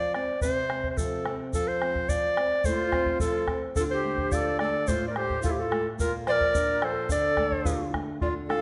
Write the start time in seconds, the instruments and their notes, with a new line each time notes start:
Already playing: nylon-string guitar F3, clarinet D5
0.14 nylon-string guitar C4, clarinet D5, bombo rim
0.41 nylon-string guitar C3, clarinet C5, bombo low, shaker
0.70 nylon-string guitar C4, bombo rim
0.84 bombo low
0.90 clarinet C5
0.97 nylon-string guitar F3, clarinet A4, bombo low, shaker
1.25 nylon-string guitar C4, bombo rim
1.53 nylon-string guitar F3, clarinet A4, bombo low, shaker
1.68 clarinet C5
1.82 nylon-string guitar C4, bombo rim
1.95 bombo low
2.09 nylon-string guitar F3, clarinet D5, bombo low, shaker
2.37 nylon-string guitar C4, bombo rim
2.64 nylon-string guitar A3, quena F4, clarinet C5, bombo low, shaker
2.92 nylon-string guitar C4, bombo rim, bombo low
3.06 bombo low
3.20 nylon-string guitar F3, quena F4, clarinet A4, bombo low, shaker
3.48 nylon-string guitar C4, bombo rim, bombo low
3.76 nylon-string guitar D3, quena F4, clarinet A4, bombo low, shaker
3.90 quena G4, clarinet C5
4.04 nylon-string guitar A3
4.18 bombo low
4.32 nylon-string guitar F4, quena A4, clarinet D5, bombo low, shaker
4.59 nylon-string guitar A3, quena A4, clarinet D5, bombo rim
4.88 nylon-string guitar A2, quena F4, clarinet C5, bombo low, shaker
5.07 quena A#4, clarinet D5
5.16 nylon-string guitar A3, quena G4, clarinet C5, bombo rim
5.30 bombo low
5.43 quena F4, nylon-string guitar F4, clarinet A4, bombo low, shaker
5.49 quena E4, clarinet G4
5.57 quena G4, clarinet A4
5.62 quena F4
5.71 nylon-string guitar A3, bombo rim
5.99 nylon-string guitar A#2, quena F4, clarinet A#4, bombo low, shaker
6.27 nylon-string guitar F3, quena C5, clarinet D5, bombo rim
6.31 quena A#4
6.41 bombo low
6.54 nylon-string guitar D4, bombo low, shaker
6.82 nylon-string guitar F3, quena A4, clarinet C5, bombo rim
7.09 nylon-string guitar D3, quena A4, clarinet D5, bombo low, shaker
7.37 nylon-string guitar A3, bombo rim, bombo low
7.52 bombo low
7.65 nylon-string guitar F4, bombo low, shaker
7.94 nylon-string guitar A3, bombo rim, bombo low
8.21 nylon-string guitar D3, clarinet F4, quena D5, bombo low
8.49 nylon-string guitar A3 D4 F4, clarinet A4, quena G5, bombo rim
8.53 quena F5